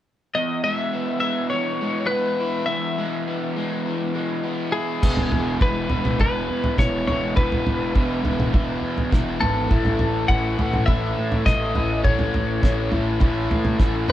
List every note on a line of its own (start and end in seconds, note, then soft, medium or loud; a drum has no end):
0.35 2.69 E2 medium
0.35 0.62 D#5 medium
0.64 1.22 G#3 medium
0.64 1.19 E5 medium
0.93 2.10 B3 medium
1.20 1.81 G#3 medium
1.20 1.49 E5 medium
1.50 2.98 E3 medium
1.50 2.11 C#5 medium
1.81 2.97 G#3 medium
2.07 3.26 B3 medium
2.07 2.69 B4 medium
2.40 3.86 E4 medium
2.66 4.15 E2 medium
2.66 3.51 E5 medium
2.98 3.55 G#3 medium
3.27 4.42 B3 medium
3.56 4.13 G#3 medium
3.86 5.01 E3 medium
4.14 5.01 G#3 medium
4.43 5.01 B3 medium
4.72 5.02 E4 medium
4.72 5.57 G#4 medium
5.01 5.28 E1 medium
5.01 5.60 E2 medium
5.01 5.59 B2 medium
5.01 5.60 E3 medium
5.01 5.61 G#3 medium
5.01 5.61 B3 medium
5.01 5.61 E4 medium
5.01 kick medium
5.01 floor tom medium
5.01 crash medium
5.17 floor tom medium
5.32 5.57 E1 medium
5.32 floor tom medium
5.60 5.86 E1 medium
5.60 5.89 E2 medium
5.60 5.88 B2 medium
5.60 5.89 E3 medium
5.60 5.90 G#3 medium
5.60 5.90 B3 medium
5.60 5.90 E4 medium
5.60 6.19 B4 medium
5.60 kick medium
5.90 6.15 E1 medium
5.90 6.17 E2 medium
5.90 6.17 B2 medium
5.90 6.18 E3 medium
5.90 6.18 G#3 medium
5.90 6.19 B3 medium
5.90 6.19 E4 medium
5.90 floor tom medium
6.05 floor tom medium
6.05 mid tom medium
6.18 6.45 E1 medium
6.18 6.76 E2 medium
6.18 6.77 B2 medium
6.18 6.78 E3 medium
6.18 6.77 G#3 medium
6.18 6.77 B3 loud
6.18 6.78 E4 loud
6.18 6.79 B4 medium
6.18 kick medium
6.18 floor tom medium
6.50 6.74 E2 medium
6.64 floor tom medium
6.77 7.03 E1 medium
6.77 7.05 E2 medium
6.77 7.06 B2 medium
6.77 7.07 E3 medium
6.77 7.06 G#3 medium
6.77 7.07 B3 medium
6.77 7.08 E4 medium
6.77 7.06 C#5 medium
6.77 kick medium
6.77 snare medium
6.77 mid tom medium
7.07 7.33 E1 medium
7.07 7.33 E2 medium
7.07 7.34 B2 medium
7.07 7.35 E3 medium
7.07 7.35 G#3 medium
7.07 7.35 B3 medium
7.07 7.36 E4 medium
7.07 7.36 C#5 medium
7.07 floor tom medium
7.35 7.62 E1 medium
7.35 7.93 E2 medium
7.35 7.94 B2 medium
7.35 7.95 E3 medium
7.35 7.94 G#3 medium
7.35 7.95 B3 loud
7.35 7.96 E4 medium
7.35 9.38 B4 medium
7.35 kick loud
7.35 floor tom medium
7.52 floor tom medium
7.66 7.91 E1 medium
7.66 floor tom medium
7.94 8.20 E1 medium
7.94 8.22 E2 medium
7.94 8.23 B2 medium
7.94 8.24 E3 medium
7.94 8.23 G#3 medium
7.94 8.24 B3 medium
7.94 8.24 E4 medium
7.94 kick medium
8.23 8.49 E1 medium
8.23 8.52 E2 medium
8.23 8.52 B2 medium
8.23 8.53 E3 medium
8.23 8.52 G#3 medium
8.23 8.53 B3 medium
8.23 8.54 E4 medium
8.23 floor tom medium
8.40 floor tom medium
8.40 mid tom medium
8.53 8.79 E1 medium
8.53 9.10 E2 loud
8.53 9.11 B2 medium
8.53 9.12 E3 medium
8.53 9.11 G#3 medium
8.53 9.12 B3 medium
8.53 9.13 E4 medium
8.53 kick loud
8.53 floor tom medium
8.83 9.08 E2 medium
8.98 floor tom medium
9.11 9.37 E1 medium
9.11 9.39 E2 medium
9.11 9.40 B2 medium
9.11 9.41 E3 medium
9.11 9.40 G#3 medium
9.11 9.41 B3 medium
9.11 9.42 E4 medium
9.11 kick loud
9.11 snare medium
9.11 mid tom medium
9.41 9.67 G#1 medium
9.41 9.69 E2 medium
9.41 9.69 B2 medium
9.41 9.70 E3 medium
9.41 9.69 G#3 medium
9.41 9.70 B3 medium
9.41 9.70 E4 medium
9.41 10.25 A4 medium
9.41 floor tom medium
9.70 9.96 A1 medium
9.70 10.28 A2 medium
9.70 10.28 E3 medium
9.70 10.29 A3 medium
9.70 10.29 C#4 medium
9.70 10.29 E4 loud
9.70 kick loud
9.70 floor tom medium
9.85 floor tom medium
9.99 10.25 A1 medium
9.99 floor tom medium
10.28 10.54 A1 medium
10.28 10.58 A2 medium
10.28 10.58 E3 medium
10.28 10.58 A3 medium
10.28 10.59 C#4 medium
10.28 10.59 E4 medium
10.28 10.86 F#5 medium
10.28 kick loud
10.58 10.84 A1 medium
10.58 10.86 A2 medium
10.58 10.87 E3 medium
10.58 10.87 A3 medium
10.58 10.87 C#4 medium
10.58 10.88 E4 medium
10.58 floor tom medium
10.73 floor tom medium
10.73 mid tom medium
10.86 11.13 A1 medium
10.86 11.45 A2 medium
10.86 11.45 E3 medium
10.86 11.45 A3 loud
10.86 11.46 C#4 loud
10.86 11.46 E4 loud
10.86 11.42 E5 medium
10.86 kick loud
10.86 floor tom medium
11.18 11.42 A2 medium
11.32 floor tom medium
11.46 11.71 A1 medium
11.46 11.74 A2 medium
11.46 11.75 E3 medium
11.46 11.75 A3 medium
11.46 11.75 C#4 medium
11.46 11.76 E4 medium
11.46 12.01 D#5 loud
11.46 kick medium
11.46 snare medium
11.46 mid tom medium
11.75 12.01 A1 medium
11.75 12.02 A2 medium
11.75 12.04 E3 medium
11.75 12.03 A3 medium
11.75 12.04 C#4 medium
11.75 12.05 E4 medium
11.75 floor tom medium
12.04 12.29 A1 medium
12.04 12.61 A2 medium
12.04 12.62 E3 medium
12.04 12.62 A3 medium
12.04 12.62 C#4 medium
12.04 12.63 E4 medium
12.04 14.09 C#5 medium
12.04 kick loud
12.04 floor tom medium
12.19 floor tom medium
12.34 12.59 A1 medium
12.34 floor tom medium
12.62 12.88 A1 medium
12.62 12.90 A2 medium
12.62 12.91 E3 medium
12.62 12.91 A3 medium
12.62 12.91 C#4 medium
12.62 12.92 E4 medium
12.62 kick loud
12.62 snare medium
12.91 13.17 A1 medium
12.91 13.19 A2 medium
12.91 13.20 E3 medium
12.91 13.20 A3 medium
12.91 13.20 C#4 medium
12.91 13.21 E4 medium
12.91 floor tom medium
13.20 13.46 A1 medium
13.20 13.78 A2 medium
13.20 13.80 E3 medium
13.20 13.79 A3 medium
13.20 13.79 C#4 medium
13.20 13.80 E4 medium
13.20 kick loud
13.20 floor tom medium
13.51 13.75 A2 medium
13.51 floor tom medium
13.65 floor tom medium
13.65 mid tom medium
13.79 14.04 A1 medium
13.79 14.07 A2 medium
13.79 14.08 E3 medium
13.79 14.08 A3 medium
13.79 14.08 C#4 medium
13.79 14.09 E4 medium
13.79 kick loud
13.79 snare medium
14.08 14.12 F#1 medium
14.08 14.12 A2 medium
14.08 14.12 E3 medium
14.08 14.12 A3 medium
14.08 14.12 C#4 medium
14.08 mid tom medium